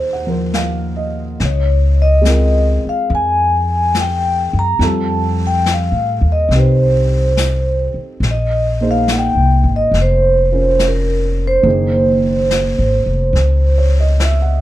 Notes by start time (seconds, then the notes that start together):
Already playing: D#2 A#3 D#4 G#4 C5
0.13 F#5
0.27 F3 A#4 C5
0.54 F5, snare, hi-hat pedal
0.97 D#5
1.40 C#2, brush sweep, snare
1.45 C#5
2.02 D#5
2.21 G#3 C4 F4, snare, hi-hat pedal
2.27 A#4
2.85 F5, muted upright bass stroke
3.09 F2, brush sweep
3.15 G#5
3.95 snare, hi-hat pedal
4.01 G5
4.53 F#2
4.59 A#5
4.79 F2 G3 C4 F4 A4, brush sweep, snare
4.86 A5
5.47 G5
5.66 snare, hi-hat pedal
5.74 F5
5.92 A2
6.21 D#2
6.32 D#5
6.49 C2 C4 D#4, brush sweep, snare
6.55 G4 B4
6.59 C5
7.37 snare, hi-hat pedal
7.94 muted upright bass stroke
8.20 A#1, brush sweep, snare
8.31 D#5
8.81 A#3 D#4 G#4 C5
8.91 F5
9.08 snare, hi-hat pedal
9.12 F#5
9.19 G5
9.35 C2
9.64 G#1
9.76 D#5
9.91 F1, brush sweep, snare
10.01 C5
10.51 C#4 F4 A#4
10.79 snare, hi-hat pedal
10.88 A#4
11.47 C5
11.63 F#1 D#3 A#3 G#4, brush sweep
11.68 C5
12.51 snare, hi-hat pedal
12.79 G#1
13.06 F1
13.33 C#2, brush sweep, snare
13.78 C#5
14.00 D#5
14.20 E5, snare, hi-hat pedal
14.42 F#5